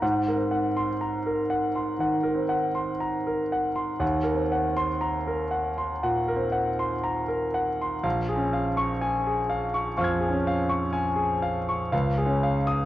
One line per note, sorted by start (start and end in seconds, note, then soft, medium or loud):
0.02 1.98 G#2 soft
0.02 0.43 F#5 soft
0.28 0.68 A#4 soft
0.36 0.89 C4 soft
0.51 0.92 F#5 soft
0.77 1.17 C6 soft
1.01 1.41 A#5 soft
1.26 1.66 A#4 soft
1.50 1.91 F#5 soft
1.75 2.16 C6 soft
1.99 2.54 D#3 soft
1.99 2.41 F#5 soft
2.23 2.66 A#4 soft
2.34 2.89 C4 soft
2.49 2.91 F#5 soft
2.75 3.17 C6 soft
3.00 3.42 A#5 soft
3.27 3.67 A#4 soft
3.52 3.92 F#5 soft
3.76 4.01 C6 soft
4.00 5.98 D#2 soft
4.00 4.40 F#5 soft
4.23 4.65 A#4 soft
4.34 4.88 C4 soft
4.52 4.92 F#5 soft
4.77 5.17 C6 medium
5.01 5.42 A#5 soft
5.28 5.68 A#4 soft
5.51 5.92 F#5 soft
5.78 6.18 C6 soft
6.03 6.58 A#2 soft
6.03 6.44 F#5 soft
6.28 6.70 A#4 soft
6.37 6.92 C4 soft
6.52 6.94 F#5 soft
6.79 7.21 C6 soft
7.04 7.45 A#5 soft
7.28 7.69 A#4 soft
7.54 7.94 F#5 soft
7.82 8.05 C6 soft
8.03 9.92 A#1 soft
8.03 8.43 F5 soft
8.29 8.68 G#4 soft
8.36 8.88 C#4 soft
8.53 8.92 F5 soft
8.77 9.16 C#6 medium
9.01 9.40 G#5 soft
9.26 9.64 G#4 soft
9.49 9.87 F5 soft
9.74 9.96 C#6 soft
9.97 10.49 F2 soft
9.97 10.36 F5 soft
9.97 10.68 C#6 soft
10.01 11.90 F6 soft
10.01 11.92 G#6 soft
10.20 10.59 G#4 soft
10.31 10.81 C#4 soft
10.47 10.85 F5 soft
10.69 11.08 C#6 soft
10.93 11.32 G#5 medium
11.16 11.56 G#4 soft
11.43 11.82 F5 soft
11.69 11.93 C#6 soft
11.92 12.85 C#2 medium
11.92 12.32 F5 soft
12.18 12.57 G#4 soft
12.26 12.78 C#4 soft
12.43 12.81 F5 soft
12.67 12.85 D#6 medium